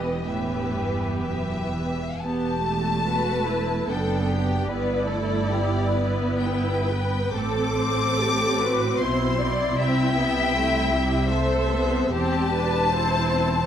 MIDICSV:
0, 0, Header, 1, 6, 480
1, 0, Start_track
1, 0, Key_signature, 1, "minor"
1, 0, Tempo, 921659
1, 626, Tempo, 1011804
1, 1106, Time_signature, 3, 2, 24, 8
1, 1106, Tempo, 853485
1, 1586, Tempo, 813008
1, 3026, Tempo, 921659
1, 3986, Tempo, 826446
1, 4946, Tempo, 766284
1, 6386, Tempo, 847458
1, 6866, Tempo, 767263
1, 7813, End_track
2, 0, Start_track
2, 0, Title_t, "Violin section"
2, 0, Program_c, 0, 48
2, 0, Note_on_c, 0, 75, 50
2, 134, Note_off_c, 0, 75, 0
2, 145, Note_on_c, 0, 76, 38
2, 618, Note_off_c, 0, 76, 0
2, 625, Note_on_c, 0, 76, 52
2, 1086, Note_off_c, 0, 76, 0
2, 1102, Note_on_c, 0, 81, 77
2, 2070, Note_off_c, 0, 81, 0
2, 2077, Note_on_c, 0, 79, 52
2, 2548, Note_on_c, 0, 74, 78
2, 2552, Note_off_c, 0, 79, 0
2, 3485, Note_off_c, 0, 74, 0
2, 3507, Note_on_c, 0, 79, 58
2, 3988, Note_off_c, 0, 79, 0
2, 3990, Note_on_c, 0, 86, 88
2, 4949, Note_off_c, 0, 86, 0
2, 4949, Note_on_c, 0, 84, 64
2, 5441, Note_off_c, 0, 84, 0
2, 5444, Note_on_c, 0, 79, 82
2, 6369, Note_off_c, 0, 79, 0
2, 6384, Note_on_c, 0, 76, 64
2, 6861, Note_on_c, 0, 81, 90
2, 6865, Note_off_c, 0, 76, 0
2, 7805, Note_off_c, 0, 81, 0
2, 7813, End_track
3, 0, Start_track
3, 0, Title_t, "Violin section"
3, 0, Program_c, 1, 48
3, 0, Note_on_c, 1, 67, 36
3, 0, Note_on_c, 1, 71, 38
3, 136, Note_off_c, 1, 71, 0
3, 137, Note_off_c, 1, 67, 0
3, 142, Note_on_c, 1, 71, 39
3, 146, Note_on_c, 1, 67, 35
3, 980, Note_off_c, 1, 71, 0
3, 982, Note_off_c, 1, 67, 0
3, 1584, Note_on_c, 1, 71, 53
3, 2047, Note_off_c, 1, 71, 0
3, 2065, Note_on_c, 1, 69, 45
3, 2309, Note_off_c, 1, 69, 0
3, 2309, Note_on_c, 1, 67, 47
3, 2548, Note_off_c, 1, 67, 0
3, 2549, Note_on_c, 1, 71, 51
3, 2778, Note_on_c, 1, 69, 45
3, 2785, Note_off_c, 1, 71, 0
3, 3023, Note_off_c, 1, 69, 0
3, 3030, Note_on_c, 1, 67, 50
3, 3260, Note_off_c, 1, 67, 0
3, 3262, Note_on_c, 1, 71, 51
3, 3973, Note_off_c, 1, 71, 0
3, 3995, Note_on_c, 1, 69, 49
3, 4232, Note_off_c, 1, 69, 0
3, 4233, Note_on_c, 1, 72, 52
3, 4465, Note_off_c, 1, 72, 0
3, 4469, Note_on_c, 1, 69, 52
3, 4706, Note_off_c, 1, 69, 0
3, 4714, Note_on_c, 1, 71, 46
3, 4942, Note_on_c, 1, 72, 53
3, 4950, Note_off_c, 1, 71, 0
3, 5193, Note_on_c, 1, 74, 61
3, 5197, Note_off_c, 1, 72, 0
3, 5428, Note_on_c, 1, 76, 67
3, 5437, Note_off_c, 1, 74, 0
3, 6379, Note_on_c, 1, 72, 65
3, 6380, Note_off_c, 1, 76, 0
3, 6853, Note_off_c, 1, 72, 0
3, 6857, Note_on_c, 1, 67, 63
3, 7104, Note_off_c, 1, 67, 0
3, 7106, Note_on_c, 1, 71, 61
3, 7348, Note_off_c, 1, 71, 0
3, 7351, Note_on_c, 1, 72, 60
3, 7813, Note_off_c, 1, 72, 0
3, 7813, End_track
4, 0, Start_track
4, 0, Title_t, "Viola section"
4, 0, Program_c, 2, 48
4, 0, Note_on_c, 2, 52, 35
4, 0, Note_on_c, 2, 59, 38
4, 134, Note_off_c, 2, 52, 0
4, 134, Note_off_c, 2, 59, 0
4, 144, Note_on_c, 2, 52, 32
4, 144, Note_on_c, 2, 59, 32
4, 981, Note_off_c, 2, 52, 0
4, 981, Note_off_c, 2, 59, 0
4, 1111, Note_on_c, 2, 67, 39
4, 1114, Note_on_c, 2, 59, 51
4, 1340, Note_off_c, 2, 59, 0
4, 1353, Note_on_c, 2, 57, 43
4, 1566, Note_off_c, 2, 67, 0
4, 1595, Note_on_c, 2, 66, 44
4, 1827, Note_on_c, 2, 64, 40
4, 1833, Note_off_c, 2, 66, 0
4, 2057, Note_off_c, 2, 57, 0
4, 2071, Note_off_c, 2, 64, 0
4, 2073, Note_on_c, 2, 62, 39
4, 2074, Note_on_c, 2, 59, 38
4, 2542, Note_off_c, 2, 59, 0
4, 2549, Note_on_c, 2, 59, 46
4, 2549, Note_on_c, 2, 64, 51
4, 2550, Note_off_c, 2, 62, 0
4, 2780, Note_off_c, 2, 59, 0
4, 2792, Note_on_c, 2, 57, 44
4, 3025, Note_off_c, 2, 57, 0
4, 3034, Note_on_c, 2, 59, 48
4, 3501, Note_off_c, 2, 64, 0
4, 3507, Note_on_c, 2, 64, 48
4, 3746, Note_off_c, 2, 64, 0
4, 3749, Note_on_c, 2, 71, 46
4, 3987, Note_off_c, 2, 71, 0
4, 3990, Note_off_c, 2, 59, 0
4, 3994, Note_on_c, 2, 60, 55
4, 3995, Note_on_c, 2, 69, 47
4, 4465, Note_off_c, 2, 69, 0
4, 4479, Note_on_c, 2, 67, 47
4, 4710, Note_on_c, 2, 66, 48
4, 4711, Note_off_c, 2, 67, 0
4, 4946, Note_on_c, 2, 64, 52
4, 4948, Note_off_c, 2, 66, 0
4, 5197, Note_off_c, 2, 64, 0
4, 5204, Note_on_c, 2, 64, 57
4, 5419, Note_off_c, 2, 60, 0
4, 5435, Note_on_c, 2, 60, 56
4, 5667, Note_off_c, 2, 60, 0
4, 5676, Note_on_c, 2, 59, 56
4, 5889, Note_off_c, 2, 64, 0
4, 5897, Note_on_c, 2, 64, 47
4, 5899, Note_on_c, 2, 57, 50
4, 5905, Note_off_c, 2, 59, 0
4, 6140, Note_off_c, 2, 57, 0
4, 6142, Note_on_c, 2, 55, 51
4, 6371, Note_off_c, 2, 64, 0
4, 6385, Note_off_c, 2, 55, 0
4, 6393, Note_on_c, 2, 69, 53
4, 6394, Note_on_c, 2, 57, 56
4, 6623, Note_on_c, 2, 59, 61
4, 6627, Note_off_c, 2, 57, 0
4, 6862, Note_on_c, 2, 60, 61
4, 6862, Note_on_c, 2, 67, 55
4, 6866, Note_off_c, 2, 59, 0
4, 6870, Note_off_c, 2, 69, 0
4, 7107, Note_off_c, 2, 60, 0
4, 7116, Note_on_c, 2, 62, 51
4, 7340, Note_off_c, 2, 67, 0
4, 7348, Note_off_c, 2, 62, 0
4, 7358, Note_on_c, 2, 64, 51
4, 7361, Note_on_c, 2, 60, 54
4, 7813, Note_off_c, 2, 60, 0
4, 7813, Note_off_c, 2, 64, 0
4, 7813, End_track
5, 0, Start_track
5, 0, Title_t, "Cello section"
5, 0, Program_c, 3, 48
5, 0, Note_on_c, 3, 40, 38
5, 97, Note_off_c, 3, 40, 0
5, 144, Note_on_c, 3, 45, 42
5, 368, Note_off_c, 3, 45, 0
5, 381, Note_on_c, 3, 43, 34
5, 618, Note_on_c, 3, 42, 36
5, 624, Note_off_c, 3, 43, 0
5, 863, Note_off_c, 3, 42, 0
5, 864, Note_on_c, 3, 40, 30
5, 1097, Note_off_c, 3, 40, 0
5, 1103, Note_on_c, 3, 40, 41
5, 2046, Note_off_c, 3, 40, 0
5, 2070, Note_on_c, 3, 42, 44
5, 2539, Note_off_c, 3, 42, 0
5, 2549, Note_on_c, 3, 43, 45
5, 3965, Note_off_c, 3, 43, 0
5, 3985, Note_on_c, 3, 45, 48
5, 4927, Note_off_c, 3, 45, 0
5, 4951, Note_on_c, 3, 47, 48
5, 5438, Note_on_c, 3, 48, 46
5, 5442, Note_off_c, 3, 47, 0
5, 6842, Note_off_c, 3, 48, 0
5, 6861, Note_on_c, 3, 40, 51
5, 7813, Note_off_c, 3, 40, 0
5, 7813, End_track
6, 0, Start_track
6, 0, Title_t, "Double bass section"
6, 0, Program_c, 4, 48
6, 0, Note_on_c, 4, 28, 35
6, 1000, Note_off_c, 4, 28, 0
6, 1106, Note_on_c, 4, 28, 37
6, 2048, Note_off_c, 4, 28, 0
6, 2073, Note_on_c, 4, 30, 47
6, 2540, Note_off_c, 4, 30, 0
6, 2553, Note_on_c, 4, 31, 44
6, 3967, Note_off_c, 4, 31, 0
6, 3989, Note_on_c, 4, 33, 44
6, 4929, Note_off_c, 4, 33, 0
6, 4950, Note_on_c, 4, 35, 49
6, 5436, Note_on_c, 4, 36, 53
6, 5442, Note_off_c, 4, 35, 0
6, 6842, Note_off_c, 4, 36, 0
6, 6863, Note_on_c, 4, 28, 59
6, 7813, Note_off_c, 4, 28, 0
6, 7813, End_track
0, 0, End_of_file